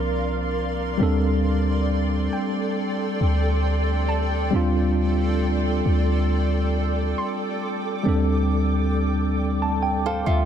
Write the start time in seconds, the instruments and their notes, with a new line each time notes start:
Already playing: 808-style bass C2, tine electric piano F3 C4 D4 A#4, ambient pad A#4 D5 F5 C6
0.97 808-style bass D2, tine electric piano G3 C4 D4, ambient pad A4 G5
1.03 tine electric piano A4
2.33 synth pluck G5
3.21 808-style bass D2
4.09 synth pluck A5
4.51 808-style bass D2, tine electric piano G3 C4 D4
4.56 tine electric piano F4
5.86 808-style bass D2
6.29 ambient pad D6
7.18 synth pluck C6
8.03 808-style bass D2, tine electric piano G3 C4 D4
8.09 tine electric piano A4
9.62 tine electric piano A5
9.83 tine electric piano G5
10.06 nylon-string guitar A4 C5, tine electric piano F5
10.26 808-style bass D2, nylon-string guitar F4 A4, tine electric piano E5, synth pluck C6